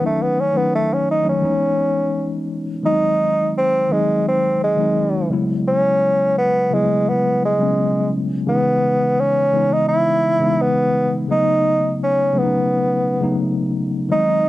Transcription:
0.01 0.37 D#3 medium
0.01 0.38 F#3 medium
0.01 0.38 A3 medium
0.01 0.39 C#4 medium
0.01 0.39 D#4 medium
0.06 0.24 A3 medium
0.22 0.42 B3 medium
0.41 0.59 C#4 medium
0.53 1.01 D#3 medium
0.53 1.02 F#3 medium
0.53 1.02 A3 medium
0.53 1.03 C#4 medium
0.53 1.03 D#4 medium
0.58 0.75 B3 medium
0.75 0.95 A3 medium
0.94 1.10 C#4 medium
1.11 1.27 D#4 medium
1.23 1.43 D#3 medium
1.23 1.43 F#3 medium
1.23 1.43 A3 medium
1.23 1.42 C#4 medium
1.23 1.44 D#4 medium
1.29 2.47 C#4 medium
1.41 2.56 E3 medium
1.41 2.56 G#3 medium
1.41 2.57 B3 medium
1.41 2.57 C#4 medium
1.41 2.57 D#4 medium
2.83 3.54 D#3 medium
2.83 3.54 F#3 medium
2.83 3.55 G#3 medium
2.83 2.92 B3 medium
2.83 3.52 D#4 loud
2.83 3.56 D#4 medium
2.92 3.59 C4 medium
3.58 3.94 C4 loud
3.89 4.48 D#3 medium
3.89 4.49 F#3 medium
3.89 4.49 G#3 medium
3.89 4.27 G#3 medium
3.89 4.50 C4 medium
3.89 4.50 D#4 medium
4.29 4.60 C4 medium
4.64 5.29 G#3 medium
4.77 5.31 D#3 medium
4.77 5.30 F#3 medium
4.77 5.30 G#3 medium
4.77 5.32 C4 medium
4.77 5.32 D#4 medium
5.30 6.43 C#3 medium
5.30 6.44 F#3 medium
5.30 6.44 G#3 medium
5.30 6.45 B3 medium
5.30 6.45 E4 medium
5.68 6.34 C#4 loud
6.38 6.75 B3 loud
6.70 7.30 C#3 medium
6.70 7.30 F#3 medium
6.70 6.79 G3 soft
6.70 7.11 G#3 medium
6.70 7.31 B3 medium
6.70 7.31 E4 medium
6.79 7.34 G#3 medium
7.09 7.44 B3 medium
7.45 8.11 G#3 medium
7.59 8.18 C#3 medium
7.59 8.18 F#3 medium
7.59 8.19 G#3 medium
7.59 8.19 B3 medium
7.59 8.19 C#4 medium
8.47 9.17 C#3 medium
8.47 9.18 E3 medium
8.47 9.18 G#3 medium
8.47 9.18 B3 medium
8.47 9.22 B3 medium
8.47 9.19 D#4 medium
9.20 9.75 C#4 loud
9.53 10.12 C#3 medium
9.53 10.12 E3 medium
9.53 10.12 G#3 medium
9.53 10.13 B3 medium
9.53 10.13 D#4 medium
9.73 9.88 D#4 loud
9.89 10.63 E4 loud
10.40 10.99 C#3 medium
10.40 11.00 E3 medium
10.40 11.00 G#3 medium
10.40 11.00 B3 medium
10.40 11.01 D#4 medium
10.62 11.13 B3 loud
11.28 11.99 C#3 medium
11.28 11.99 F#3 medium
11.28 12.00 A3 medium
11.28 12.00 B3 medium
11.28 12.00 D#4 medium
11.28 11.97 D#4 loud
12.03 12.40 C#4 medium
12.33 12.92 C#3 medium
12.33 12.93 F#3 medium
12.33 12.93 A3 medium
12.33 12.94 B3 medium
12.33 12.42 C#4 medium
12.38 13.43 B3 medium
12.43 12.97 D#4 medium
13.20 13.80 C#3 medium
13.20 13.81 F#3 medium
13.20 13.81 A3 medium
13.20 13.81 B3 medium
13.20 13.82 D#4 medium
14.09 14.49 D#3 medium
14.09 14.49 F#3 medium
14.09 14.49 G#3 medium
14.09 14.49 C4 medium
14.09 14.49 D#4 medium
14.09 14.49 D#4 loud

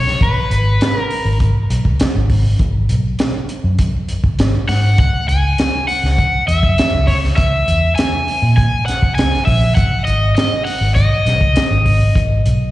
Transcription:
0.00 0.16 B1 medium
0.00 0.22 C#5 medium
0.07 snare soft
0.21 0.33 G#1 medium
0.21 0.97 B4 medium
0.21 kick loud
0.21 closed hi-hat medium
0.35 muted fingered electric bass stroke soft
0.50 0.76 G#1 medium
0.50 closed hi-hat medium
0.81 snare loud
0.81 closed hi-hat medium
0.97 1.37 A#4 medium
1.11 open hi-hat medium
1.25 1.50 G#1 medium
1.40 kick medium
1.40 closed hi-hat medium
1.70 1.85 B1 medium
1.70 closed hi-hat medium
1.85 1.97 C#2 medium
1.85 kick medium
2.00 muted fingered electric bass stroke soft
2.00 snare loud
2.00 closed hi-hat loud
2.15 2.52 G#1 medium
2.30 kick medium
2.30 open hi-hat medium
2.59 2.85 G#1 loud
2.59 kick loud
2.59 closed hi-hat medium
2.89 3.14 B1 medium
2.89 closed hi-hat medium
3.19 snare loud
3.19 closed hi-hat medium
3.49 closed hi-hat medium
3.64 3.89 F#2 medium
3.79 kick medium
3.79 closed hi-hat medium
4.08 closed hi-hat medium
4.24 muted fingered electric bass stroke soft
4.24 kick medium
4.39 4.51 G#1 medium
4.39 snare loud
4.39 closed hi-hat medium
4.68 4.94 G#2 medium
4.68 4.98 F#5 medium
4.68 snare soft
4.68 open hi-hat medium
4.98 5.11 C#2 medium
4.98 5.28 F#5 loud
4.98 kick loud
4.98 closed hi-hat medium
5.14 muted fingered electric bass stroke soft
5.28 5.53 C#2 medium
5.28 5.84 G#5 loud
5.28 closed hi-hat medium
5.58 snare loud
5.58 closed hi-hat medium
5.88 6.47 F#5 loud
5.88 open hi-hat medium
6.04 6.28 C#2 medium
6.04 snare soft
6.18 kick medium
6.18 closed hi-hat medium
6.48 6.63 E2 medium
6.48 7.09 E5 medium
6.48 closed hi-hat medium
6.63 6.76 F#2 medium
6.63 kick medium
6.78 muted fingered electric bass stroke soft
6.78 snare loud
6.78 closed hi-hat medium
6.93 7.31 C#2 medium
7.07 7.15 C#5 medium
7.07 kick medium
7.07 snare soft
7.07 open hi-hat medium
7.24 snare soft
7.36 7.63 C#2 medium
7.36 7.93 E5 loud
7.36 kick loud
7.36 closed hi-hat medium
7.68 7.93 E2 medium
7.68 closed hi-hat medium
7.96 8.55 G#5 medium
7.96 snare loud
7.96 closed hi-hat medium
8.28 open hi-hat medium
8.42 8.67 A#2 loud
8.57 8.86 G#5 loud
8.57 kick medium
8.57 closed hi-hat medium
8.86 9.14 F#5 medium
8.86 snare soft
8.86 closed hi-hat medium
9.03 muted fingered electric bass stroke soft
9.03 kick medium
9.15 9.30 C#2 medium
9.15 9.45 G#5 loud
9.15 closed hi-hat medium
9.19 snare loud
9.34 snare soft
9.45 9.72 A#1 loud
9.45 9.74 E5 medium
9.45 kick medium
9.45 open hi-hat medium
9.75 9.89 G#1 medium
9.75 10.04 F#5 medium
9.75 kick loud
9.75 closed hi-hat medium
9.92 muted fingered electric bass stroke soft
10.05 10.31 G#1 medium
10.05 10.34 D#5 medium
10.05 closed hi-hat medium
10.35 10.63 D#5 medium
10.35 snare loud
10.35 closed hi-hat medium
10.65 10.95 F#5 medium
10.65 open hi-hat medium
10.81 11.06 G#1 medium
10.95 12.71 D#5 medium
10.95 kick medium
10.95 closed hi-hat medium
11.26 11.41 B1 medium
11.26 snare soft
11.26 closed hi-hat medium
11.41 11.53 C#2 medium
11.41 kick medium
11.56 muted fingered electric bass stroke soft
11.56 snare loud
11.56 closed hi-hat medium
11.71 12.08 G#1 medium
11.86 kick medium
11.86 open hi-hat medium
12.15 12.40 G#1 medium
12.15 kick loud
12.15 closed hi-hat medium
12.46 12.71 B1 medium
12.46 closed hi-hat medium

